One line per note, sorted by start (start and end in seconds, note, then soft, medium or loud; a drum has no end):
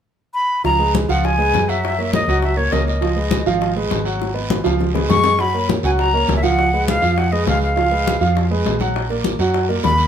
0.34 0.62 B5 loud
0.64 1.06 C#2 medium
0.64 0.77 F3 medium
0.64 0.77 F4 medium
0.64 0.77 F5 medium
0.64 0.93 A#5 loud
0.64 high bongo medium
0.64 high conga soft
0.64 long guiro medium
0.79 1.04 G#3 medium
0.79 1.04 G#4 medium
0.79 1.04 B4 medium
0.79 high conga soft
0.94 high bongo soft
0.94 high conga medium
0.94 short guiro medium
1.09 1.51 C#2 medium
1.09 1.33 F3 medium
1.09 1.34 F4 medium
1.09 1.34 F5 medium
1.09 1.26 F#5 medium
1.09 high conga soft
1.09 short guiro medium
1.24 1.71 G#5 medium
1.24 high bongo medium
1.24 high conga soft
1.38 1.63 G#3 medium
1.38 1.63 G#4 medium
1.38 1.64 B4 medium
1.38 high conga soft
1.53 2.23 F#2 medium
1.53 high bongo medium
1.53 low bongo medium
1.53 high conga medium
1.53 short guiro medium
1.68 1.93 F#3 medium
1.68 1.93 F#4 medium
1.68 2.13 E5 medium
1.68 1.93 F#5 medium
1.68 short guiro medium
1.84 high bongo medium
1.84 high conga soft
1.84 long guiro medium
1.98 2.23 A#3 medium
1.98 2.23 A#4 medium
1.98 2.23 C#5 medium
1.98 high bongo soft
1.98 high conga soft
2.13 2.41 D#5 medium
2.13 high bongo medium
2.13 high conga loud
2.13 short guiro medium
2.28 2.69 C#2 medium
2.28 2.52 F#3 medium
2.28 2.53 F#4 medium
2.28 2.53 F#5 medium
2.28 high conga soft
2.28 short guiro medium
2.42 2.58 E5 medium
2.42 high bongo medium
2.42 high conga soft
2.42 long guiro medium
2.57 2.70 A#3 medium
2.57 2.70 A#4 medium
2.57 2.74 C#5 medium
2.57 2.70 C#5 medium
2.57 high bongo soft
2.57 high conga soft
2.72 3.41 C#2 medium
2.72 2.97 A#3 medium
2.72 2.97 A#4 medium
2.72 2.97 C#5 medium
2.72 2.87 D#5 medium
2.72 high bongo medium
2.72 low bongo medium
2.72 high conga medium
2.72 short guiro medium
2.87 3.72 D#5 medium
2.87 high bongo soft
2.87 high conga soft
2.87 short guiro medium
3.01 3.14 F3 medium
3.01 3.14 F4 medium
3.01 3.14 F5 medium
3.01 high bongo medium
3.01 high conga soft
3.01 long guiro medium
3.16 3.41 G#3 medium
3.16 3.41 G#4 medium
3.16 3.41 B4 medium
3.16 high conga soft
3.31 high bongo medium
3.31 high conga loud
3.31 short guiro medium
3.46 3.88 G#1 medium
3.46 3.71 F3 medium
3.46 3.71 F4 medium
3.46 3.71 F5 medium
3.46 short guiro medium
3.61 high bongo medium
3.61 high conga soft
3.61 long guiro medium
3.76 4.01 G#3 medium
3.76 4.01 G#4 medium
3.76 4.01 B4 medium
3.76 high conga soft
3.90 4.60 G#1 medium
3.90 high bongo medium
3.90 low bongo medium
3.90 high conga medium
3.90 short guiro medium
4.05 4.30 F#3 medium
4.05 4.30 F#4 medium
4.05 4.30 F#5 medium
4.05 short guiro medium
4.20 high bongo medium
4.20 high conga soft
4.20 long guiro medium
4.34 4.59 B3 medium
4.34 4.59 B4 medium
4.34 4.59 D#5 medium
4.34 high conga soft
4.50 high bongo medium
4.50 high conga loud
4.50 short guiro medium
4.64 5.07 C#2 medium
4.64 4.89 F3 medium
4.64 4.89 F4 medium
4.64 4.89 F5 medium
4.64 high bongo medium
4.64 high conga soft
4.64 short guiro medium
4.79 low bongo medium
4.79 high conga soft
4.79 long guiro medium
4.94 5.06 G#3 medium
4.94 5.07 G#4 medium
4.94 5.07 B4 medium
4.94 low bongo loud
4.94 high conga soft
5.08 5.78 F#2 medium
5.08 5.33 G#3 medium
5.08 5.34 G#4 medium
5.08 5.34 B4 medium
5.08 5.42 C#6 loud
5.08 low bongo loud
5.08 high conga medium
5.08 short guiro medium
5.23 low bongo medium
5.23 high conga soft
5.23 short guiro medium
5.38 5.51 F#3 medium
5.38 5.51 F#4 medium
5.38 5.52 F#5 medium
5.38 5.70 B5 loud
5.38 high bongo medium
5.38 high conga soft
5.38 long guiro medium
5.54 5.78 A#3 medium
5.54 5.79 A#4 medium
5.54 5.79 C#5 medium
5.54 high conga soft
5.68 high bongo medium
5.68 high conga loud
5.68 short guiro medium
5.83 6.25 C#2 medium
5.83 6.08 F#3 medium
5.83 6.08 F#4 medium
5.83 6.08 F#5 medium
5.83 5.91 G#5 medium
5.83 high conga soft
5.83 short guiro medium
5.99 6.34 A#5 medium
5.99 high bongo medium
5.99 high conga soft
5.99 long guiro medium
6.13 6.38 A#3 medium
6.13 6.38 A#4 medium
6.13 6.38 C#5 medium
6.13 high conga soft
6.27 6.97 C#2 medium
6.27 high bongo medium
6.27 low bongo medium
6.27 high conga medium
6.27 short guiro medium
6.36 6.44 E5 medium
6.43 6.67 F3 medium
6.43 6.68 F4 medium
6.43 6.68 F5 medium
6.43 6.87 F#5 medium
6.43 high conga medium
6.43 short guiro medium
6.58 high bongo medium
6.58 high conga soft
6.58 long guiro medium
6.73 6.97 G#3 medium
6.73 6.97 G#4 medium
6.73 6.98 B4 medium
6.73 high bongo soft
6.73 high conga soft
6.88 7.20 F5 medium
6.88 high bongo medium
6.88 high conga loud
6.88 short guiro medium
7.02 7.44 F2 medium
7.02 7.26 F3 medium
7.02 7.26 F4 medium
7.02 7.26 F5 medium
7.02 high conga soft
7.02 short guiro medium
7.16 7.34 F#5 medium
7.16 high bongo medium
7.16 high conga soft
7.16 long guiro medium
7.32 7.44 G#3 medium
7.32 7.44 G#4 medium
7.32 7.45 B4 medium
7.32 7.47 D#5 medium
7.32 high bongo soft
7.32 high conga soft
7.46 8.15 C#2 medium
7.46 7.71 G#3 medium
7.46 7.71 G#4 medium
7.46 7.71 B4 medium
7.46 7.61 F5 medium
7.46 high bongo medium
7.46 low bongo medium
7.46 high conga medium
7.46 short guiro medium
7.61 8.47 F5 medium
7.61 high bongo soft
7.61 high conga soft
7.61 short guiro medium
7.76 7.88 F3 medium
7.76 7.88 F4 medium
7.76 7.89 F5 medium
7.76 high bongo medium
7.76 high conga soft
7.76 long guiro medium
7.91 8.15 G#3 medium
7.91 8.16 G#4 medium
7.91 8.16 B4 medium
7.91 high conga soft
8.07 high bongo medium
8.07 high conga medium
8.07 short guiro medium
8.21 8.62 F2 medium
8.21 8.45 F3 medium
8.21 8.45 F4 medium
8.21 8.45 F5 medium
8.21 high conga soft
8.21 short guiro medium
8.35 high bongo medium
8.35 high conga soft
8.35 long guiro medium
8.50 8.75 G#3 medium
8.50 8.75 G#4 medium
8.50 8.75 B4 medium
8.50 high conga soft
8.65 9.34 A#1 medium
8.65 high bongo medium
8.65 low bongo medium
8.65 high conga medium
8.65 short guiro medium
8.79 9.04 F#3 medium
8.79 9.05 F#4 medium
8.79 9.05 F#5 medium
8.79 high conga medium
8.79 short guiro medium
8.94 high bongo medium
8.94 high conga soft
8.94 long guiro medium
9.10 9.34 A#3 medium
9.10 9.34 A#4 medium
9.10 9.34 D5 medium
9.10 high bongo soft
9.10 high conga soft
9.24 high bongo medium
9.24 high conga medium
9.24 short guiro medium
9.39 9.80 F#2 loud
9.39 9.63 F#3 medium
9.39 9.63 F#4 medium
9.39 9.64 F#5 medium
9.39 high conga soft
9.39 short guiro medium
9.54 high bongo medium
9.54 high conga soft
9.54 long guiro medium
9.69 9.81 A#3 medium
9.69 9.81 A#4 medium
9.69 9.81 D5 medium
9.69 high bongo soft
9.69 high conga soft
9.83 10.07 D#2 medium
9.83 10.07 A#3 medium
9.83 10.07 A#4 medium
9.83 10.07 D5 medium
9.83 10.07 B5 loud
9.83 high bongo medium
9.83 low bongo medium
9.83 high conga medium
9.83 short guiro medium
9.98 high bongo soft
9.98 high conga soft
9.98 short guiro medium